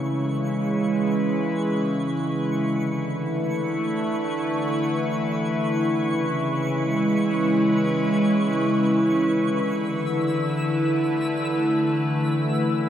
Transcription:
Already playing: C#3 E3 G#3 E4 B4 C#6
2.59 D3
3.05 A3
5.96 C#3
6.26 G#3
9.24 D3 E6
9.93 A3
12.62 C#3

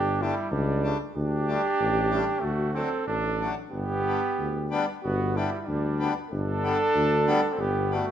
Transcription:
Already playing: G1 D4 G4
0.22 G3 A3 D4 E4
0.51 C#2 G3 D4
0.83 G3 A3 D4
1.15 D2 D4 G4
1.48 G3 A3 D4
1.80 A1
2.10 G3 A3 D4
2.40 D2 A3 F#4
2.74 F#3 A3 C4 D4 A4
3.06 A1 D4 A4
3.40 F#3 A3 D4
3.71 G1 B3 G4
4.06 G3 B3 D4
4.38 D2
4.71 G3 B3 D4
5.03 G1 B3 F#4
5.36 G3 B3 D4 E4
5.59 G3 E4
5.66 D2 G3 D4
5.99 G3 B3 D4
6.30 G1 D4 A4
6.63 G3 B3 D4
6.95 D2
7.26 G3 B3 D4
7.51 C4 A4
7.57 G1 B3 G4
7.91 G3 A3 B3 D4
7.95 F#4

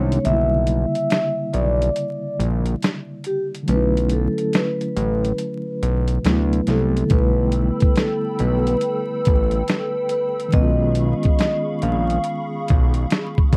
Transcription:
Already playing: C2 D#3 G#3 B3 C#4 D4 D#4 C#5
0.12 closed hi-hat
0.20 D3 G3
0.25 B1 A#3 E5, closed hi-hat
0.30 C#3 E4
0.67 closed hi-hat
0.95 closed hi-hat
1.10 E5, snare, closed hi-hat
1.53 B1 D5, closed hi-hat
1.82 closed hi-hat
1.96 closed hi-hat
2.39 A#1, closed hi-hat
2.66 closed hi-hat
2.83 snare, closed hi-hat
3.24 G4, closed hi-hat
3.55 closed hi-hat
3.63 D3 F#3
3.68 B1 A3 B4, closed hi-hat
3.72 C#4 E4
3.97 closed hi-hat
4.09 A4, closed hi-hat
4.38 closed hi-hat
4.53 B4, snare, closed hi-hat
4.81 closed hi-hat
4.97 A1, closed hi-hat
5.25 closed hi-hat
5.38 closed hi-hat
5.83 B1, closed hi-hat
6.08 closed hi-hat
6.22 D2 C3 F#3 A3, snare, closed hi-hat
6.27 B3 E4
6.53 closed hi-hat
6.67 C2 A4, snare, closed hi-hat
6.97 closed hi-hat
7.05 D3 G3
7.10 B1 A3 A4 B4 G5 B5 E6, kick, closed hi-hat
7.14 B3 E4
7.52 closed hi-hat
7.80 kick, closed hi-hat
7.96 A4, snare, closed hi-hat
8.39 B1 B4, closed hi-hat
8.67 B4, closed hi-hat
8.81 closed hi-hat
9.25 A1, kick, closed hi-hat
9.51 closed hi-hat
9.68 snare, closed hi-hat
10.09 B4, closed hi-hat
10.40 closed hi-hat
10.48 D#3 G#3 F5 B5 C#6, closed hi-hat
10.53 B1 B3 G#4 D#5, kick
10.58 C#4 F4
10.95 closed hi-hat
11.23 kick, closed hi-hat
11.39 D#5, snare, closed hi-hat
11.82 A#1 F5, closed hi-hat
12.10 closed hi-hat
12.24 closed hi-hat
12.68 B1, kick, closed hi-hat
12.94 closed hi-hat
13.10 snare, closed hi-hat
13.38 kick
13.53 C2, kick, closed hi-hat

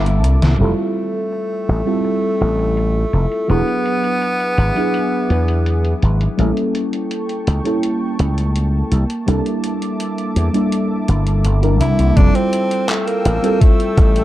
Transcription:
Already playing: G1 G3 A#3 D4 E4 A4 E5 A5 D6
0.06 closed hi-hat
0.24 C2, closed hi-hat
0.42 C2, snare, closed hi-hat
0.58 F1 G3 A3 C4 E4 F4 A4 G5 E6
0.79 closed hi-hat
0.96 closed hi-hat
1.15 closed hi-hat
1.33 closed hi-hat
1.51 closed hi-hat
1.69 A1, closed hi-hat
1.85 G3 C4 E4 F4 A4, closed hi-hat
2.05 closed hi-hat
2.41 A1, closed hi-hat
2.59 closed hi-hat
2.77 closed hi-hat
3.13 F1, closed hi-hat
3.32 closed hi-hat
3.48 E1 F#3 B3 D4 E4 G#4 B4 E5 G#5 D6, closed hi-hat
3.68 closed hi-hat
3.86 closed hi-hat
4.04 closed hi-hat
4.22 closed hi-hat
4.40 closed hi-hat
4.58 G#1, closed hi-hat
4.75 F#3 B3 D4 E4 G#4, closed hi-hat
4.94 closed hi-hat
5.30 E2, closed hi-hat
5.48 closed hi-hat
5.66 closed hi-hat
5.85 closed hi-hat
6.02 G#1, closed hi-hat
6.21 closed hi-hat
6.37 A1 G3 A#3 C#4 E4 A4 G5 A5 C#6, closed hi-hat
6.57 closed hi-hat
6.75 closed hi-hat
6.93 closed hi-hat
7.11 closed hi-hat
7.29 closed hi-hat
7.47 C#2, closed hi-hat
7.64 G3 A#3 C#4 E4 A4, closed hi-hat
7.83 closed hi-hat
8.19 C#2, closed hi-hat
8.38 closed hi-hat
8.56 closed hi-hat
8.91 C2 E5 D6, closed hi-hat
9.10 closed hi-hat
9.26 C2 G3 A#3 D4 E4 A4, closed hi-hat
9.46 closed hi-hat
9.64 closed hi-hat
9.82 closed hi-hat
10.00 closed hi-hat
10.18 closed hi-hat
10.36 E2, closed hi-hat
10.53 G3 A#3 D4 E4 A4, closed hi-hat
10.72 closed hi-hat
11.08 G1, closed hi-hat
11.27 closed hi-hat
11.45 G1, closed hi-hat
11.62 G3 A#3 D4 E4 A#4, closed hi-hat
11.81 C2 E4, closed hi-hat
11.99 C2, closed hi-hat
12.16 F1 G3 C4 D4 E4 F4 A4 G5 E6, kick, closed hi-hat
12.35 C4, closed hi-hat
12.53 closed hi-hat
12.71 closed hi-hat
12.89 A3, clap, closed hi-hat
13.08 A#3, closed hi-hat
13.25 A1, closed hi-hat
13.42 G3 C4 E4 F4 A4, closed hi-hat
13.61 A3, kick, closed hi-hat
13.80 closed hi-hat
13.97 A1, kick, closed hi-hat
14.16 closed hi-hat

